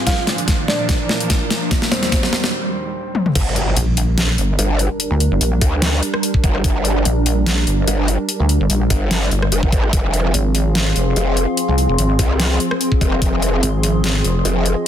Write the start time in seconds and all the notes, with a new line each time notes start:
Already playing: F3 C4 G#4 F5 G#5, riser
0.07 A#2 D4 F4 F5, kick, snare, closed hi-hat
0.22 A#4
0.27 A#5, snare, closed hi-hat
0.38 closed hi-hat
0.48 kick, snare, closed hi-hat
0.68 D4 D5, snare
0.89 kick, snare, closed hi-hat
1.09 snare
1.20 closed hi-hat
1.30 kick, snare, closed hi-hat
1.50 snare, closed hi-hat
1.71 D#2 G3 D#4, kick, snare, closed hi-hat
1.82 snare
1.92 C4 C5, snare, closed hi-hat
2.03 snare, closed hi-hat
2.12 kick, snare, closed hi-hat
2.23 snare
2.33 snare
2.44 snare
3.15 high tom
3.26 mid tom
3.35 G1 G3 D4 A#4, kick, closed hi-hat, crash, impact
3.56 closed hi-hat
3.77 A#1, closed hi-hat
3.97 open hi-hat
4.18 snare, closed hi-hat
4.38 G1, closed hi-hat
4.59 G1, closed hi-hat
4.79 closed hi-hat
5.00 closed hi-hat
5.11 D2
5.20 closed hi-hat
5.31 G1
5.41 A#1, closed hi-hat
5.61 D2, kick, open hi-hat
5.82 snare, closed hi-hat
6.03 closed hi-hat
6.14 cross-stick
6.23 closed hi-hat
6.34 kick
6.44 G1, kick, closed hi-hat
6.55 cross-stick
6.64 G1, kick, closed hi-hat
6.85 closed hi-hat
7.05 A#1, closed hi-hat
7.26 open hi-hat
7.46 snare, closed hi-hat
7.67 G1, closed hi-hat
7.88 G1, closed hi-hat
8.08 closed hi-hat
8.29 closed hi-hat
8.40 D2
8.49 closed hi-hat
8.60 G1
8.70 A#1, closed hi-hat
8.90 G1, kick, open hi-hat
9.11 snare, closed hi-hat
9.31 G1, closed hi-hat
9.42 cross-stick
9.52 F1, closed hi-hat
9.63 G1, kick
9.72 G#1, kick, closed hi-hat
9.83 cross-stick
9.93 F1 F3 C4 G#4, kick, closed hi-hat
10.03 G#4 C6
10.08 F5
10.14 closed hi-hat
10.34 G#1, closed hi-hat
10.55 open hi-hat
10.75 snare, closed hi-hat
10.96 F1, closed hi-hat
11.16 F1, closed hi-hat
11.37 closed hi-hat
11.57 closed hi-hat
11.68 C2
11.78 closed hi-hat
11.89 F1
11.98 G#1, closed hi-hat
12.19 C2, kick, open hi-hat
12.40 snare, closed hi-hat
12.60 closed hi-hat
12.71 cross-stick
12.81 closed hi-hat
12.92 kick
13.01 F1, kick, closed hi-hat
13.12 cross-stick
13.22 F1, kick, closed hi-hat
13.42 closed hi-hat
13.63 G#1, closed hi-hat
13.83 D#5, open hi-hat
14.04 snare, closed hi-hat
14.24 F1, closed hi-hat
14.45 F1, closed hi-hat
14.66 closed hi-hat